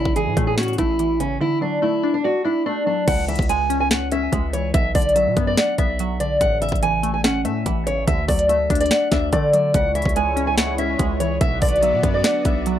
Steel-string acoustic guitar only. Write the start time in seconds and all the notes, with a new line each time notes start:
Already playing: E4
0.16 G#4
0.47 G#4
0.58 F#4
0.79 E4
1.20 C#4
1.41 E4
1.62 D4
1.83 E4
2.14 D4
2.25 F#4
2.45 E4
2.66 D4
2.87 D4
3.08 F#5
3.28 E5
3.49 G#5
3.80 G#5
3.91 F#5
4.12 E5
4.53 C#5
4.74 E5
4.95 D5
5.16 E5
5.47 D5
5.57 F#5
5.78 E5
6.20 D5
6.41 F#5
6.62 E5
6.83 G#5
7.14 G#5
7.24 F#5
7.45 E5
7.87 C#5
8.08 E5
8.28 D5
8.49 E5
8.81 D5
8.91 F#5
9.12 E5
9.33 D5
9.54 D5
9.74 F#5
9.95 E5
10.16 G#5
10.47 G#5
10.58 F#5
10.79 E5
11.20 C#5
11.41 E5
11.62 D5
11.83 E5
12.14 D5
12.24 F#5
12.45 E5